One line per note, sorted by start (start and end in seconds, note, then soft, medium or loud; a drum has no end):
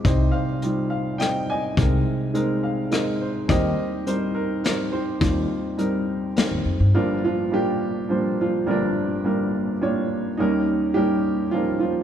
0.04 1.73 C2 soft
0.04 0.28 C2 medium
0.04 1.73 C3 medium
0.04 0.52 G3 medium
0.04 0.53 C4 medium
0.04 0.53 D#4 medium
0.04 0.88 G4 soft
0.04 0.32 C5 medium
0.04 0.34 D#5 medium
0.04 kick medium
0.04 closed hi-hat soft
0.32 1.16 C5 medium
0.32 0.89 F5 medium
0.62 1.10 G3 medium
0.62 1.10 C4 soft
0.62 1.11 D#4 medium
0.62 1.11 F4 medium
0.62 closed hi-hat soft
0.90 1.17 F5 medium
1.18 1.67 G3 soft
1.18 1.67 C4 soft
1.18 1.67 D#4 soft
1.18 1.50 D#5 medium
1.18 1.49 G5 medium
1.18 cross-stick medium
1.18 closed hi-hat soft
1.50 2.91 D#5 medium
1.50 3.17 G#5 medium
1.77 3.45 C2 soft
1.77 2.01 C2 medium
1.77 3.45 C3 medium
1.77 2.25 G#3 medium
1.77 2.25 C4 medium
1.77 2.25 D#4 medium
1.77 2.25 A#4 medium
1.77 kick medium
1.77 closed hi-hat soft
2.34 2.82 G#3 medium
2.34 2.82 C4 medium
2.34 2.82 D#4 medium
2.34 2.82 A#4 medium
2.34 closed hi-hat soft
2.63 2.90 F5 medium
2.91 3.39 G#3 medium
2.91 3.39 C4 medium
2.91 3.39 D#4 medium
2.91 3.40 A#4 medium
2.91 3.19 D#5 medium
2.91 cross-stick medium
2.91 closed hi-hat soft
3.21 3.48 C5 medium
3.48 5.17 D#2 medium
3.48 3.72 D#2 medium
3.48 5.17 D#3 medium
3.48 3.96 G3 medium
3.48 3.96 C4 medium
3.48 3.96 D#4 medium
3.48 4.32 G4 medium
3.48 3.96 A#4 medium
3.48 4.06 C5 medium
3.48 4.08 D#5 loud
3.48 kick medium
3.48 closed hi-hat soft
4.06 4.54 G3 medium
4.06 4.54 C4 medium
4.06 4.54 D#4 medium
4.06 4.33 A#4 medium
4.06 4.36 C5 medium
4.06 closed hi-hat soft
4.35 4.62 A#4 medium
4.64 5.12 G3 medium
4.64 5.12 C4 medium
4.64 5.12 D#4 medium
4.64 4.93 A#4 medium
4.64 snare medium
4.64 closed hi-hat soft
4.92 6.33 G4 medium
4.92 6.32 C5 medium
5.21 6.90 D#2 medium
5.21 5.44 D#2 medium
5.21 6.90 D#3 soft
5.21 5.68 G3 medium
5.21 5.68 C4 medium
5.21 5.69 D#4 medium
5.21 5.69 F4 medium
5.21 kick medium
5.21 closed hi-hat soft
5.78 6.26 G3 medium
5.78 6.26 C4 medium
5.78 6.26 D#4 medium
5.78 6.27 A#4 medium
5.78 closed hi-hat soft
6.36 6.84 G3 medium
6.36 6.84 C4 medium
6.36 6.85 D#4 medium
6.36 6.38 A#4 medium
6.36 snare medium
6.36 closed hi-hat soft
6.51 6.64 D#2 medium
6.65 6.78 F2 medium
6.80 6.93 G2 medium
6.94 8.63 G1 medium
6.94 8.63 G2 medium
6.94 7.22 F3 medium
6.94 7.42 G3 medium
6.94 7.42 A#3 medium
6.94 7.42 D4 medium
6.94 7.23 F4 loud
6.94 7.43 A#4 medium
7.24 7.51 F3 medium
7.24 7.51 F4 loud
7.51 7.99 G3 medium
7.51 8.00 A#3 medium
7.51 8.00 D4 medium
7.51 8.00 F4 medium
7.51 8.12 G4 loud
7.51 8.00 A#4 medium
8.09 8.37 F3 medium
8.09 8.57 G3 medium
8.09 8.57 A#3 medium
8.09 8.57 D4 medium
8.09 8.40 F4 medium
8.09 8.58 C5 medium
8.41 8.66 F3 medium
8.41 8.66 F4 medium
8.66 10.34 G1 medium
8.66 10.34 G2 medium
8.66 9.14 G3 medium
8.66 8.70 A#3 medium
8.66 8.69 D4 medium
8.66 9.15 F4 medium
8.66 9.15 A#4 medium
8.71 9.51 D3 medium
8.71 9.51 F3 medium
8.71 9.23 A#3 medium
8.71 9.24 D4 medium
9.25 9.72 G3 medium
9.25 9.72 A#3 medium
9.25 9.72 D4 medium
9.25 9.72 F4 medium
9.25 9.72 A#4 medium
9.81 10.29 G3 medium
9.81 10.29 A#3 medium
9.81 10.29 D4 medium
9.81 10.29 F4 medium
9.81 10.29 C#5 medium
10.37 12.03 D#2 medium
10.37 12.03 D#3 medium
10.37 10.86 G3 medium
10.37 10.86 A#3 medium
10.37 10.87 C#4 medium
10.37 10.95 D#4 medium
10.37 10.87 A#4 medium
10.94 11.43 G3 medium
10.94 11.43 A#3 medium
10.94 11.43 C#4 medium
10.94 11.43 D#4 medium
10.94 11.54 G4 medium
10.94 11.44 A#4 medium
11.51 11.80 F3 medium
11.51 12.00 G3 medium
11.51 12.01 A#3 medium
11.51 12.01 C#4 medium
11.51 12.01 D#4 medium
11.51 11.78 F4 loud
11.51 12.01 A#4 medium
11.80 12.03 F3 medium
11.80 12.03 F4 medium